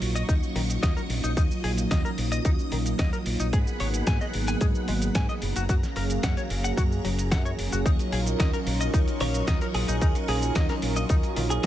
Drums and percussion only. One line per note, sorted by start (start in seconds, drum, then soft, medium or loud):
0.02 open hi-hat medium
0.16 closed hi-hat soft
0.16 shaker medium
0.29 kick loud
0.29 closed hi-hat medium
0.29 shaker medium
0.43 shaker soft
0.56 open hi-hat loud
0.70 closed hi-hat soft
0.70 shaker medium
0.83 kick loud
0.83 snare loud
0.83 closed hi-hat medium
0.83 shaker medium
0.97 shaker soft
1.10 open hi-hat medium
1.24 closed hi-hat soft
1.24 shaker medium
1.37 kick loud
1.37 closed hi-hat medium
1.37 shaker medium
1.51 shaker soft
1.64 open hi-hat medium
1.78 closed hi-hat medium
1.78 shaker medium
1.91 kick medium
1.91 snare loud
1.91 closed hi-hat medium
1.91 shaker medium
2.05 shaker soft
2.18 open hi-hat medium
2.32 closed hi-hat medium
2.32 shaker medium
2.45 kick loud
2.45 closed hi-hat medium
2.45 shaker medium
2.59 shaker soft
2.72 open hi-hat loud
2.86 closed hi-hat soft
2.86 shaker medium
2.99 kick loud
2.99 snare loud
2.99 closed hi-hat medium
2.99 shaker medium
3.13 shaker soft
3.26 open hi-hat medium
3.40 closed hi-hat soft
3.40 shaker medium
3.53 kick loud
3.53 closed hi-hat medium
3.53 shaker medium
3.67 shaker soft
3.80 open hi-hat medium
3.94 closed hi-hat medium
3.94 shaker medium
4.07 kick medium
4.07 snare loud
4.07 closed hi-hat medium
4.07 shaker medium
4.21 shaker soft
4.34 open hi-hat medium
4.48 closed hi-hat medium
4.48 shaker medium
4.61 kick loud
4.61 closed hi-hat medium
4.61 shaker medium
4.75 shaker soft
4.88 open hi-hat loud
5.02 closed hi-hat medium
5.02 shaker medium
5.15 kick medium
5.15 snare loud
5.15 closed hi-hat medium
5.15 shaker medium
5.29 shaker soft
5.42 open hi-hat medium
5.56 closed hi-hat medium
5.56 shaker medium
5.69 kick loud
5.69 closed hi-hat medium
5.69 shaker medium
5.83 snare soft
5.83 shaker soft
5.96 open hi-hat medium
6.10 closed hi-hat medium
6.10 shaker medium
6.23 kick medium
6.23 snare loud
6.23 closed hi-hat medium
6.23 shaker medium
6.37 closed hi-hat soft
6.37 shaker soft
6.50 open hi-hat medium
6.64 closed hi-hat medium
6.64 shaker medium
6.77 kick loud
6.77 closed hi-hat medium
6.77 shaker medium
6.92 shaker soft
7.05 open hi-hat loud
7.19 closed hi-hat medium
7.19 shaker medium
7.31 kick loud
7.31 snare loud
7.31 closed hi-hat medium
7.31 shaker medium
7.46 shaker soft
7.59 open hi-hat medium
7.72 closed hi-hat medium
7.72 shaker medium
7.86 kick loud
7.86 closed hi-hat medium
7.86 shaker medium
7.99 closed hi-hat soft
7.99 shaker soft
8.12 open hi-hat loud
8.26 closed hi-hat soft
8.26 shaker medium
8.40 kick loud
8.40 snare loud
8.40 closed hi-hat medium
8.40 shaker medium
8.53 closed hi-hat soft
8.53 shaker soft
8.67 open hi-hat medium
8.81 closed hi-hat soft
8.81 shaker medium
8.94 kick loud
8.94 closed hi-hat medium
8.94 shaker medium
9.08 closed hi-hat soft
9.08 shaker soft
9.20 open hi-hat loud
9.34 closed hi-hat soft
9.34 shaker medium
9.47 kick loud
9.47 snare loud
9.47 closed hi-hat medium
9.47 shaker medium
9.61 closed hi-hat soft
9.61 shaker soft
9.74 open hi-hat medium
9.88 closed hi-hat soft
9.88 shaker medium
10.01 kick loud
10.01 closed hi-hat medium
10.01 shaker medium
10.15 closed hi-hat soft
10.15 shaker soft
10.28 open hi-hat loud
10.42 closed hi-hat soft
10.42 shaker medium
10.55 kick loud
10.55 snare loud
10.55 closed hi-hat medium
10.55 shaker medium
10.69 snare soft
10.69 closed hi-hat soft
10.69 shaker soft
10.82 open hi-hat medium
10.96 closed hi-hat soft
10.96 shaker medium
11.09 kick loud
11.09 closed hi-hat medium
11.09 shaker medium
11.23 closed hi-hat soft
11.23 shaker soft
11.36 open hi-hat loud
11.50 closed hi-hat soft
11.50 shaker medium
11.63 closed hi-hat medium